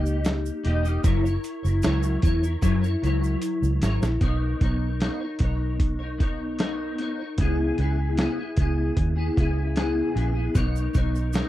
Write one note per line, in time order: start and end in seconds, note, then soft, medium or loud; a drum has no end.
0.00 0.49 C#2 medium
0.00 0.63 A#3 medium
0.00 0.63 D#4 medium
0.00 0.65 G4 medium
0.00 0.66 D#5 medium
0.06 shaker soft
0.25 snare loud
0.25 closed hi-hat medium
0.25 shaker medium
0.46 shaker soft
0.64 0.97 E1 medium
0.64 0.84 A#3 medium
0.64 0.84 D#4 medium
0.64 0.84 G4 medium
0.64 0.82 D#5 medium
0.64 closed hi-hat medium
0.83 1.06 A#3 soft
0.83 1.04 D#4 soft
0.83 1.05 G4 medium
0.83 1.04 D#5 medium
0.83 shaker soft
1.04 1.36 F#1 medium
1.04 1.24 F#3 medium
1.04 1.24 E4 medium
1.04 1.24 A#4 medium
1.04 1.22 C#5 medium
1.04 kick loud
1.04 closed hi-hat medium
1.04 shaker medium
1.23 1.65 E4 soft
1.23 1.64 A#4 soft
1.23 1.62 C#5 medium
1.23 shaker soft
1.44 closed hi-hat medium
1.44 shaker soft
1.63 1.80 F#1 loud
1.63 1.82 E4 soft
1.63 1.83 A#4 soft
1.63 1.83 C#5 soft
1.63 shaker soft
1.82 2.16 C#2 medium
1.82 2.21 F#3 medium
1.82 2.22 E4 medium
1.82 2.23 A#4 medium
1.82 2.24 C#5 loud
1.82 snare loud
1.82 closed hi-hat medium
1.82 shaker medium
2.03 shaker medium
2.22 2.55 E2 medium
2.22 2.42 F#3 medium
2.22 2.43 E4 medium
2.22 2.43 A#4 medium
2.22 2.41 C#5 medium
2.22 kick medium
2.22 closed hi-hat medium
2.22 shaker medium
2.42 2.61 E4 soft
2.42 2.62 A#4 soft
2.42 2.63 C#5 soft
2.42 shaker soft
2.62 2.95 F#2 loud
2.62 2.82 F#3 medium
2.62 2.83 E4 medium
2.62 2.83 A#4 medium
2.62 2.81 C#5 medium
2.62 kick medium
2.62 closed hi-hat medium
2.62 shaker medium
2.82 3.02 E4 medium
2.82 3.03 A#4 medium
2.82 3.02 C#5 medium
2.82 shaker soft
3.02 3.35 C#2 medium
3.02 3.81 F#3 medium
3.02 3.81 E4 medium
3.02 3.83 A#4 medium
3.02 3.85 C#5 medium
3.02 closed hi-hat medium
3.02 shaker soft
3.24 shaker soft
3.42 closed hi-hat medium
3.42 shaker medium
3.62 3.78 C#2 medium
3.62 shaker soft
3.81 3.98 G#1 medium
3.81 4.01 F#3 medium
3.81 4.02 E4 medium
3.81 4.02 A#4 medium
3.81 4.00 C#5 medium
3.81 snare medium
3.81 closed hi-hat medium
3.81 shaker medium
4.01 4.18 A#1 medium
4.01 4.22 E4 soft
4.01 4.21 A#4 soft
4.01 4.21 C#5 medium
4.01 snare medium
4.01 shaker soft
4.21 4.53 B1 medium
4.21 4.59 B3 medium
4.21 4.61 D#4 medium
4.21 4.62 A#4 medium
4.21 4.62 C#5 medium
4.21 kick loud
4.21 closed hi-hat medium
4.60 5.09 B1 medium
4.60 4.99 B3 medium
4.60 5.00 D#4 medium
4.60 5.01 A#4 medium
4.60 5.02 C#5 medium
4.60 kick medium
4.60 closed hi-hat medium
5.00 5.20 B3 medium
5.00 5.21 D#4 medium
5.00 5.21 A#4 medium
5.00 5.19 C#5 medium
5.00 snare loud
5.00 closed hi-hat medium
5.20 5.40 D#4 soft
5.20 5.41 A#4 medium
5.20 5.40 C#5 medium
5.39 6.95 B1 medium
5.39 5.99 B3 medium
5.39 6.00 D#4 medium
5.39 6.00 A#4 medium
5.39 kick medium
5.39 closed hi-hat medium
5.43 5.98 C#5 medium
5.80 kick medium
5.80 closed hi-hat medium
5.99 6.19 D#4 soft
5.99 6.20 A#4 medium
5.99 6.19 C#5 medium
6.18 6.57 B3 medium
6.18 6.58 D#4 medium
6.18 6.59 A#4 medium
6.18 6.60 C#5 medium
6.18 kick medium
6.18 closed hi-hat medium
6.59 6.97 B3 medium
6.59 6.99 D#4 medium
6.59 7.00 A#4 medium
6.59 7.00 C#5 medium
6.59 snare loud
6.59 closed hi-hat medium
6.98 7.19 B3 medium
6.98 7.19 D#4 medium
6.98 7.19 A#4 medium
6.98 7.17 C#5 medium
6.98 closed hi-hat medium
7.19 7.40 D#4 soft
7.19 7.39 A#4 soft
7.19 7.38 C#5 medium
7.38 7.70 C#2 medium
7.38 7.77 C#3 medium
7.38 7.78 B3 medium
7.38 7.79 E4 medium
7.38 7.79 G#4 medium
7.38 kick loud
7.38 closed hi-hat medium
7.78 8.26 C#2 medium
7.78 8.16 C#3 medium
7.78 8.17 B3 medium
7.78 8.18 E4 medium
7.78 8.19 G#4 medium
7.78 closed hi-hat medium
8.17 8.37 C#3 medium
8.17 8.38 B3 medium
8.17 8.38 E4 medium
8.17 8.36 G#4 medium
8.17 snare loud
8.17 closed hi-hat medium
8.38 8.57 B3 soft
8.38 8.58 E4 medium
8.38 8.57 G#4 soft
8.57 8.89 C#2 medium
8.57 9.16 C#3 medium
8.57 9.17 B3 medium
8.57 9.17 E4 medium
8.57 9.15 G#4 medium
8.57 kick medium
8.57 closed hi-hat medium
8.97 9.29 D#2 medium
8.97 kick medium
8.97 closed hi-hat medium
9.16 9.36 B3 soft
9.16 9.37 E4 medium
9.16 9.36 G#4 medium
9.36 10.00 C#2 medium
9.36 9.74 C#3 medium
9.36 9.75 B3 medium
9.36 9.76 E4 medium
9.36 9.77 G#4 medium
9.36 kick medium
9.36 closed hi-hat medium
9.76 10.13 C#3 medium
9.76 10.15 B3 medium
9.76 10.16 E4 medium
9.76 10.17 G#4 medium
9.76 snare loud
9.76 closed hi-hat medium
10.14 10.47 A#1 medium
10.14 10.35 C#3 medium
10.14 10.36 B3 medium
10.14 10.35 E4 medium
10.14 closed hi-hat medium
10.18 10.33 G#4 medium
10.34 10.55 E4 soft
10.34 10.55 G#4 medium
10.38 10.53 B3 soft
10.55 10.87 B1 medium
10.55 10.92 B3 medium
10.55 10.94 D#4 medium
10.55 10.95 A#4 medium
10.55 10.96 C#5 medium
10.55 kick loud
10.55 closed hi-hat medium
10.55 shaker medium
10.76 shaker soft
10.94 11.42 B1 medium
10.94 11.32 B3 medium
10.94 11.33 D#4 medium
10.94 11.34 A#4 medium
10.94 11.34 C#5 medium
10.94 kick medium
10.94 closed hi-hat medium
10.94 shaker soft
11.15 shaker soft
11.33 11.49 B3 medium
11.33 11.49 D#4 medium
11.33 11.49 A#4 medium
11.33 11.49 C#5 medium
11.33 snare loud
11.33 closed hi-hat medium
11.33 shaker medium